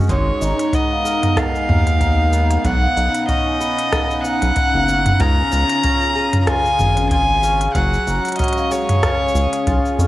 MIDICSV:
0, 0, Header, 1, 7, 480
1, 0, Start_track
1, 0, Tempo, 638298
1, 72, Time_signature, 4, 2, 24, 8
1, 7576, End_track
2, 0, Start_track
2, 0, Title_t, "Vibraphone"
2, 0, Program_c, 0, 11
2, 206, Control_c, 0, 64, 127
2, 309, Note_on_c, 0, 82, 72
2, 387, Note_off_c, 0, 82, 0
2, 553, Note_on_c, 0, 78, 86
2, 680, Note_off_c, 0, 78, 0
2, 689, Note_on_c, 0, 77, 99
2, 788, Note_off_c, 0, 77, 0
2, 1033, Note_on_c, 0, 78, 82
2, 1160, Note_off_c, 0, 78, 0
2, 1166, Note_on_c, 0, 80, 71
2, 1227, Note_off_c, 0, 80, 0
2, 1751, Note_on_c, 0, 82, 78
2, 1828, Note_off_c, 0, 82, 0
2, 1987, Note_on_c, 0, 78, 86
2, 2003, Control_c, 0, 64, 0
2, 2117, Note_off_c, 0, 78, 0
2, 2120, Note_on_c, 0, 77, 104
2, 2128, Control_c, 0, 64, 127
2, 2224, Note_off_c, 0, 77, 0
2, 2467, Note_on_c, 0, 78, 84
2, 2597, Note_off_c, 0, 78, 0
2, 2605, Note_on_c, 0, 80, 76
2, 2666, Note_off_c, 0, 80, 0
2, 3190, Note_on_c, 0, 82, 77
2, 3268, Note_off_c, 0, 82, 0
2, 3428, Note_on_c, 0, 78, 78
2, 3558, Note_off_c, 0, 78, 0
2, 3565, Note_on_c, 0, 77, 107
2, 3666, Note_off_c, 0, 77, 0
2, 3908, Note_on_c, 0, 77, 92
2, 3922, Control_c, 0, 64, 0
2, 4038, Note_off_c, 0, 77, 0
2, 4050, Note_on_c, 0, 80, 80
2, 4064, Control_c, 0, 64, 127
2, 4109, Note_off_c, 0, 80, 0
2, 4629, Note_on_c, 0, 82, 71
2, 4707, Note_off_c, 0, 82, 0
2, 4868, Note_on_c, 0, 77, 89
2, 4994, Note_off_c, 0, 77, 0
2, 5003, Note_on_c, 0, 77, 99
2, 5105, Note_off_c, 0, 77, 0
2, 5351, Note_on_c, 0, 77, 79
2, 5479, Note_off_c, 0, 77, 0
2, 5483, Note_on_c, 0, 80, 79
2, 5545, Note_off_c, 0, 80, 0
2, 5840, Control_c, 0, 64, 0
2, 5958, Control_c, 0, 64, 127
2, 6069, Note_on_c, 0, 82, 80
2, 6147, Note_off_c, 0, 82, 0
2, 6312, Note_on_c, 0, 78, 89
2, 6440, Note_off_c, 0, 78, 0
2, 6448, Note_on_c, 0, 77, 112
2, 6547, Note_off_c, 0, 77, 0
2, 6794, Note_on_c, 0, 77, 87
2, 6801, Control_c, 0, 64, 0
2, 6911, Control_c, 0, 64, 127
2, 6921, Note_off_c, 0, 77, 0
2, 6925, Note_on_c, 0, 80, 74
2, 6986, Note_off_c, 0, 80, 0
2, 7270, Note_on_c, 0, 77, 70
2, 7395, Note_off_c, 0, 77, 0
2, 7404, Note_on_c, 0, 77, 82
2, 7501, Note_off_c, 0, 77, 0
2, 7576, End_track
3, 0, Start_track
3, 0, Title_t, "Violin"
3, 0, Program_c, 1, 40
3, 76, Note_on_c, 1, 73, 87
3, 558, Note_on_c, 1, 75, 88
3, 570, Note_off_c, 1, 73, 0
3, 1041, Note_on_c, 1, 77, 107
3, 1052, Note_off_c, 1, 75, 0
3, 2000, Note_on_c, 1, 78, 104
3, 2011, Note_off_c, 1, 77, 0
3, 2470, Note_off_c, 1, 78, 0
3, 2475, Note_on_c, 1, 75, 100
3, 3163, Note_off_c, 1, 75, 0
3, 3192, Note_on_c, 1, 78, 114
3, 3911, Note_on_c, 1, 82, 122
3, 3923, Note_off_c, 1, 78, 0
3, 4821, Note_off_c, 1, 82, 0
3, 4821, Note_on_c, 1, 82, 82
3, 4869, Note_on_c, 1, 80, 122
3, 4880, Note_off_c, 1, 82, 0
3, 5341, Note_off_c, 1, 80, 0
3, 5345, Note_on_c, 1, 80, 126
3, 5798, Note_off_c, 1, 80, 0
3, 5831, Note_on_c, 1, 78, 102
3, 6281, Note_off_c, 1, 78, 0
3, 6309, Note_on_c, 1, 75, 93
3, 6551, Note_on_c, 1, 73, 101
3, 6562, Note_off_c, 1, 75, 0
3, 7512, Note_off_c, 1, 73, 0
3, 7576, End_track
4, 0, Start_track
4, 0, Title_t, "Twelve-string acoustic guitar"
4, 0, Program_c, 2, 25
4, 0, Note_on_c, 2, 61, 60
4, 0, Note_on_c, 2, 66, 69
4, 0, Note_on_c, 2, 68, 64
4, 70, Note_on_c, 2, 44, 87
4, 124, Note_off_c, 2, 66, 0
4, 125, Note_off_c, 2, 61, 0
4, 310, Note_on_c, 2, 63, 64
4, 550, Note_on_c, 2, 59, 64
4, 787, Note_off_c, 2, 68, 0
4, 790, Note_on_c, 2, 70, 70
4, 1026, Note_off_c, 2, 63, 0
4, 1029, Note_on_c, 2, 63, 64
4, 1260, Note_off_c, 2, 70, 0
4, 1269, Note_on_c, 2, 70, 67
4, 1506, Note_off_c, 2, 63, 0
4, 1509, Note_on_c, 2, 63, 64
4, 1746, Note_off_c, 2, 59, 0
4, 1749, Note_on_c, 2, 59, 65
4, 1985, Note_off_c, 2, 44, 0
4, 1988, Note_on_c, 2, 47, 84
4, 2044, Note_off_c, 2, 70, 0
4, 2228, Note_off_c, 2, 63, 0
4, 2231, Note_on_c, 2, 63, 63
4, 2466, Note_off_c, 2, 59, 0
4, 2469, Note_on_c, 2, 61, 61
4, 2710, Note_on_c, 2, 71, 71
4, 2941, Note_off_c, 2, 63, 0
4, 2950, Note_on_c, 2, 63, 70
4, 3182, Note_off_c, 2, 71, 0
4, 3191, Note_on_c, 2, 71, 66
4, 3422, Note_off_c, 2, 63, 0
4, 3431, Note_on_c, 2, 63, 66
4, 3669, Note_off_c, 2, 61, 0
4, 3672, Note_on_c, 2, 61, 63
4, 3910, Note_off_c, 2, 47, 0
4, 3911, Note_on_c, 2, 49, 90
4, 3965, Note_off_c, 2, 63, 0
4, 3965, Note_off_c, 2, 71, 0
4, 4148, Note_on_c, 2, 65, 64
4, 4387, Note_off_c, 2, 61, 0
4, 4390, Note_on_c, 2, 61, 64
4, 4629, Note_on_c, 2, 68, 74
4, 4861, Note_off_c, 2, 65, 0
4, 4870, Note_on_c, 2, 65, 74
4, 5107, Note_off_c, 2, 68, 0
4, 5110, Note_on_c, 2, 68, 71
4, 5341, Note_off_c, 2, 65, 0
4, 5350, Note_on_c, 2, 65, 68
4, 5587, Note_off_c, 2, 61, 0
4, 5590, Note_on_c, 2, 61, 66
4, 5829, Note_on_c, 2, 54, 90
4, 5831, Note_off_c, 2, 49, 0
4, 5885, Note_off_c, 2, 65, 0
4, 6070, Note_on_c, 2, 66, 63
4, 6093, Note_off_c, 2, 68, 0
4, 6307, Note_off_c, 2, 61, 0
4, 6310, Note_on_c, 2, 61, 66
4, 6549, Note_on_c, 2, 68, 73
4, 6791, Note_on_c, 2, 49, 86
4, 6844, Note_off_c, 2, 54, 0
4, 6845, Note_off_c, 2, 61, 0
4, 6845, Note_off_c, 2, 66, 0
4, 7027, Note_off_c, 2, 68, 0
4, 7030, Note_on_c, 2, 68, 67
4, 7271, Note_on_c, 2, 65, 72
4, 7513, Note_on_c, 2, 61, 68
4, 7576, Note_off_c, 2, 49, 0
4, 7576, Note_off_c, 2, 61, 0
4, 7576, Note_off_c, 2, 65, 0
4, 7576, Note_off_c, 2, 68, 0
4, 7576, End_track
5, 0, Start_track
5, 0, Title_t, "Ambient pad"
5, 0, Program_c, 3, 92
5, 0, Note_on_c, 3, 56, 82
5, 71, Note_on_c, 3, 70, 81
5, 72, Note_on_c, 3, 59, 93
5, 72, Note_on_c, 3, 63, 80
5, 1961, Note_off_c, 3, 56, 0
5, 1972, Note_off_c, 3, 70, 0
5, 1973, Note_off_c, 3, 59, 0
5, 1985, Note_on_c, 3, 61, 76
5, 1987, Note_on_c, 3, 59, 86
5, 3882, Note_off_c, 3, 63, 0
5, 3890, Note_off_c, 3, 59, 0
5, 3910, Note_on_c, 3, 68, 97
5, 3912, Note_on_c, 3, 65, 77
5, 3913, Note_on_c, 3, 49, 88
5, 5812, Note_off_c, 3, 68, 0
5, 5813, Note_off_c, 3, 49, 0
5, 5813, Note_off_c, 3, 65, 0
5, 5825, Note_on_c, 3, 56, 83
5, 5826, Note_on_c, 3, 66, 98
5, 6779, Note_off_c, 3, 56, 0
5, 6779, Note_off_c, 3, 66, 0
5, 6788, Note_on_c, 3, 68, 98
5, 6789, Note_on_c, 3, 49, 86
5, 6790, Note_on_c, 3, 65, 78
5, 7576, Note_off_c, 3, 49, 0
5, 7576, Note_off_c, 3, 61, 0
5, 7576, Note_off_c, 3, 65, 0
5, 7576, Note_off_c, 3, 68, 0
5, 7576, End_track
6, 0, Start_track
6, 0, Title_t, "Analog synth bass"
6, 0, Program_c, 4, 38
6, 68, Note_on_c, 4, 32, 96
6, 241, Note_off_c, 4, 32, 0
6, 310, Note_on_c, 4, 32, 82
6, 402, Note_off_c, 4, 32, 0
6, 1274, Note_on_c, 4, 39, 81
6, 1938, Note_off_c, 4, 39, 0
6, 1989, Note_on_c, 4, 35, 99
6, 2162, Note_off_c, 4, 35, 0
6, 2231, Note_on_c, 4, 35, 85
6, 2322, Note_off_c, 4, 35, 0
6, 3326, Note_on_c, 4, 35, 91
6, 3397, Note_off_c, 4, 35, 0
6, 3565, Note_on_c, 4, 30, 91
6, 3856, Note_off_c, 4, 30, 0
6, 3911, Note_on_c, 4, 37, 107
6, 4082, Note_off_c, 4, 37, 0
6, 4154, Note_on_c, 4, 37, 85
6, 4243, Note_off_c, 4, 37, 0
6, 5112, Note_on_c, 4, 32, 81
6, 5777, Note_off_c, 4, 32, 0
6, 5828, Note_on_c, 4, 30, 104
6, 6001, Note_off_c, 4, 30, 0
6, 6071, Note_on_c, 4, 30, 85
6, 6162, Note_off_c, 4, 30, 0
6, 7028, Note_on_c, 4, 37, 86
6, 7121, Note_off_c, 4, 37, 0
6, 7272, Note_on_c, 4, 35, 78
6, 7362, Note_off_c, 4, 35, 0
6, 7509, Note_on_c, 4, 41, 107
6, 7576, Note_off_c, 4, 41, 0
6, 7576, End_track
7, 0, Start_track
7, 0, Title_t, "Drums"
7, 22, Note_on_c, 9, 69, 25
7, 49, Note_off_c, 9, 69, 0
7, 49, Note_on_c, 9, 69, 19
7, 68, Note_on_c, 9, 36, 91
7, 70, Note_on_c, 9, 42, 41
7, 73, Note_off_c, 9, 69, 0
7, 73, Note_on_c, 9, 69, 45
7, 144, Note_off_c, 9, 36, 0
7, 145, Note_off_c, 9, 42, 0
7, 148, Note_off_c, 9, 69, 0
7, 314, Note_on_c, 9, 69, 77
7, 389, Note_off_c, 9, 69, 0
7, 446, Note_on_c, 9, 42, 51
7, 450, Note_on_c, 9, 69, 35
7, 522, Note_off_c, 9, 42, 0
7, 525, Note_off_c, 9, 69, 0
7, 548, Note_on_c, 9, 36, 99
7, 552, Note_on_c, 9, 42, 42
7, 555, Note_on_c, 9, 69, 42
7, 623, Note_off_c, 9, 36, 0
7, 627, Note_off_c, 9, 42, 0
7, 630, Note_off_c, 9, 69, 0
7, 795, Note_on_c, 9, 69, 78
7, 870, Note_off_c, 9, 69, 0
7, 926, Note_on_c, 9, 42, 53
7, 926, Note_on_c, 9, 45, 57
7, 929, Note_on_c, 9, 69, 33
7, 1001, Note_off_c, 9, 42, 0
7, 1001, Note_off_c, 9, 45, 0
7, 1004, Note_off_c, 9, 69, 0
7, 1027, Note_on_c, 9, 36, 112
7, 1031, Note_on_c, 9, 37, 74
7, 1031, Note_on_c, 9, 42, 38
7, 1034, Note_on_c, 9, 69, 43
7, 1102, Note_off_c, 9, 36, 0
7, 1106, Note_off_c, 9, 37, 0
7, 1106, Note_off_c, 9, 42, 0
7, 1109, Note_off_c, 9, 69, 0
7, 1168, Note_on_c, 9, 69, 31
7, 1244, Note_off_c, 9, 69, 0
7, 1271, Note_on_c, 9, 45, 62
7, 1346, Note_off_c, 9, 45, 0
7, 1405, Note_on_c, 9, 42, 54
7, 1408, Note_on_c, 9, 69, 35
7, 1480, Note_off_c, 9, 42, 0
7, 1483, Note_off_c, 9, 69, 0
7, 1509, Note_on_c, 9, 36, 98
7, 1510, Note_on_c, 9, 42, 44
7, 1514, Note_on_c, 9, 69, 46
7, 1584, Note_off_c, 9, 36, 0
7, 1585, Note_off_c, 9, 42, 0
7, 1589, Note_off_c, 9, 69, 0
7, 1752, Note_on_c, 9, 69, 79
7, 1828, Note_off_c, 9, 69, 0
7, 1885, Note_on_c, 9, 42, 55
7, 1888, Note_on_c, 9, 69, 37
7, 1960, Note_off_c, 9, 42, 0
7, 1963, Note_off_c, 9, 69, 0
7, 1990, Note_on_c, 9, 36, 91
7, 1990, Note_on_c, 9, 42, 44
7, 1993, Note_on_c, 9, 69, 45
7, 2065, Note_off_c, 9, 36, 0
7, 2065, Note_off_c, 9, 42, 0
7, 2069, Note_off_c, 9, 69, 0
7, 2233, Note_on_c, 9, 69, 77
7, 2308, Note_off_c, 9, 69, 0
7, 2365, Note_on_c, 9, 42, 55
7, 2368, Note_on_c, 9, 69, 32
7, 2440, Note_off_c, 9, 42, 0
7, 2443, Note_off_c, 9, 69, 0
7, 2471, Note_on_c, 9, 36, 95
7, 2472, Note_on_c, 9, 42, 42
7, 2475, Note_on_c, 9, 69, 44
7, 2546, Note_off_c, 9, 36, 0
7, 2547, Note_off_c, 9, 42, 0
7, 2550, Note_off_c, 9, 69, 0
7, 2715, Note_on_c, 9, 69, 76
7, 2790, Note_off_c, 9, 69, 0
7, 2846, Note_on_c, 9, 42, 54
7, 2850, Note_on_c, 9, 69, 32
7, 2922, Note_off_c, 9, 42, 0
7, 2925, Note_off_c, 9, 69, 0
7, 2951, Note_on_c, 9, 37, 68
7, 2951, Note_on_c, 9, 42, 44
7, 2952, Note_on_c, 9, 36, 102
7, 2955, Note_on_c, 9, 69, 41
7, 3027, Note_off_c, 9, 36, 0
7, 3027, Note_off_c, 9, 37, 0
7, 3027, Note_off_c, 9, 42, 0
7, 3030, Note_off_c, 9, 69, 0
7, 3089, Note_on_c, 9, 69, 28
7, 3164, Note_off_c, 9, 69, 0
7, 3194, Note_on_c, 9, 69, 72
7, 3269, Note_off_c, 9, 69, 0
7, 3325, Note_on_c, 9, 42, 54
7, 3328, Note_on_c, 9, 69, 34
7, 3400, Note_off_c, 9, 42, 0
7, 3403, Note_off_c, 9, 69, 0
7, 3429, Note_on_c, 9, 42, 46
7, 3432, Note_on_c, 9, 69, 43
7, 3433, Note_on_c, 9, 36, 105
7, 3504, Note_off_c, 9, 42, 0
7, 3508, Note_off_c, 9, 36, 0
7, 3508, Note_off_c, 9, 69, 0
7, 3674, Note_on_c, 9, 69, 78
7, 3749, Note_off_c, 9, 69, 0
7, 3804, Note_on_c, 9, 42, 61
7, 3804, Note_on_c, 9, 45, 82
7, 3807, Note_on_c, 9, 69, 34
7, 3879, Note_off_c, 9, 42, 0
7, 3879, Note_off_c, 9, 45, 0
7, 3882, Note_off_c, 9, 69, 0
7, 3909, Note_on_c, 9, 42, 47
7, 3911, Note_on_c, 9, 36, 96
7, 3913, Note_on_c, 9, 69, 45
7, 3984, Note_off_c, 9, 42, 0
7, 3986, Note_off_c, 9, 36, 0
7, 3988, Note_off_c, 9, 69, 0
7, 4152, Note_on_c, 9, 69, 76
7, 4227, Note_off_c, 9, 69, 0
7, 4283, Note_on_c, 9, 42, 63
7, 4286, Note_on_c, 9, 69, 35
7, 4358, Note_off_c, 9, 42, 0
7, 4362, Note_off_c, 9, 69, 0
7, 4388, Note_on_c, 9, 42, 45
7, 4392, Note_on_c, 9, 69, 43
7, 4394, Note_on_c, 9, 36, 102
7, 4464, Note_off_c, 9, 42, 0
7, 4467, Note_off_c, 9, 69, 0
7, 4469, Note_off_c, 9, 36, 0
7, 4761, Note_on_c, 9, 42, 58
7, 4761, Note_on_c, 9, 45, 69
7, 4765, Note_on_c, 9, 69, 31
7, 4837, Note_off_c, 9, 42, 0
7, 4837, Note_off_c, 9, 45, 0
7, 4840, Note_off_c, 9, 69, 0
7, 4867, Note_on_c, 9, 37, 68
7, 4867, Note_on_c, 9, 42, 44
7, 4870, Note_on_c, 9, 69, 40
7, 4871, Note_on_c, 9, 36, 108
7, 4942, Note_off_c, 9, 37, 0
7, 4942, Note_off_c, 9, 42, 0
7, 4946, Note_off_c, 9, 36, 0
7, 4946, Note_off_c, 9, 69, 0
7, 5006, Note_on_c, 9, 69, 31
7, 5081, Note_off_c, 9, 69, 0
7, 5106, Note_on_c, 9, 45, 63
7, 5109, Note_on_c, 9, 69, 68
7, 5181, Note_off_c, 9, 45, 0
7, 5184, Note_off_c, 9, 69, 0
7, 5241, Note_on_c, 9, 42, 53
7, 5245, Note_on_c, 9, 69, 30
7, 5316, Note_off_c, 9, 42, 0
7, 5320, Note_off_c, 9, 69, 0
7, 5347, Note_on_c, 9, 36, 104
7, 5347, Note_on_c, 9, 42, 48
7, 5351, Note_on_c, 9, 69, 43
7, 5422, Note_off_c, 9, 36, 0
7, 5422, Note_off_c, 9, 42, 0
7, 5426, Note_off_c, 9, 69, 0
7, 5590, Note_on_c, 9, 69, 81
7, 5665, Note_off_c, 9, 69, 0
7, 5723, Note_on_c, 9, 42, 58
7, 5726, Note_on_c, 9, 69, 31
7, 5798, Note_off_c, 9, 42, 0
7, 5801, Note_off_c, 9, 69, 0
7, 5828, Note_on_c, 9, 36, 107
7, 5829, Note_on_c, 9, 42, 48
7, 5832, Note_on_c, 9, 69, 41
7, 5903, Note_off_c, 9, 36, 0
7, 5904, Note_off_c, 9, 42, 0
7, 5907, Note_off_c, 9, 69, 0
7, 5969, Note_on_c, 9, 69, 30
7, 6044, Note_off_c, 9, 69, 0
7, 6072, Note_on_c, 9, 69, 77
7, 6147, Note_off_c, 9, 69, 0
7, 6204, Note_on_c, 9, 42, 27
7, 6207, Note_on_c, 9, 69, 33
7, 6230, Note_off_c, 9, 42, 0
7, 6230, Note_on_c, 9, 42, 34
7, 6258, Note_off_c, 9, 42, 0
7, 6258, Note_on_c, 9, 42, 36
7, 6283, Note_off_c, 9, 69, 0
7, 6285, Note_off_c, 9, 42, 0
7, 6285, Note_on_c, 9, 42, 39
7, 6311, Note_off_c, 9, 42, 0
7, 6311, Note_on_c, 9, 42, 48
7, 6314, Note_on_c, 9, 69, 43
7, 6315, Note_on_c, 9, 36, 94
7, 6346, Note_off_c, 9, 42, 0
7, 6346, Note_on_c, 9, 42, 46
7, 6378, Note_off_c, 9, 42, 0
7, 6378, Note_on_c, 9, 42, 50
7, 6389, Note_off_c, 9, 69, 0
7, 6390, Note_off_c, 9, 36, 0
7, 6412, Note_off_c, 9, 42, 0
7, 6412, Note_on_c, 9, 42, 52
7, 6449, Note_on_c, 9, 69, 30
7, 6487, Note_off_c, 9, 42, 0
7, 6524, Note_off_c, 9, 69, 0
7, 6554, Note_on_c, 9, 69, 80
7, 6629, Note_off_c, 9, 69, 0
7, 6686, Note_on_c, 9, 42, 60
7, 6686, Note_on_c, 9, 45, 65
7, 6690, Note_on_c, 9, 69, 34
7, 6762, Note_off_c, 9, 42, 0
7, 6762, Note_off_c, 9, 45, 0
7, 6765, Note_off_c, 9, 69, 0
7, 6791, Note_on_c, 9, 37, 78
7, 6791, Note_on_c, 9, 42, 47
7, 6794, Note_on_c, 9, 36, 118
7, 6794, Note_on_c, 9, 69, 44
7, 6866, Note_off_c, 9, 37, 0
7, 6866, Note_off_c, 9, 42, 0
7, 6869, Note_off_c, 9, 36, 0
7, 6869, Note_off_c, 9, 69, 0
7, 6982, Note_on_c, 9, 69, 32
7, 7035, Note_off_c, 9, 69, 0
7, 7035, Note_on_c, 9, 69, 76
7, 7110, Note_off_c, 9, 69, 0
7, 7166, Note_on_c, 9, 42, 58
7, 7169, Note_on_c, 9, 69, 33
7, 7241, Note_off_c, 9, 42, 0
7, 7244, Note_off_c, 9, 69, 0
7, 7271, Note_on_c, 9, 42, 51
7, 7273, Note_on_c, 9, 36, 107
7, 7275, Note_on_c, 9, 69, 45
7, 7347, Note_off_c, 9, 42, 0
7, 7348, Note_off_c, 9, 36, 0
7, 7350, Note_off_c, 9, 69, 0
7, 7411, Note_on_c, 9, 69, 30
7, 7486, Note_off_c, 9, 69, 0
7, 7517, Note_on_c, 9, 69, 83
7, 7576, Note_off_c, 9, 69, 0
7, 7576, End_track
0, 0, End_of_file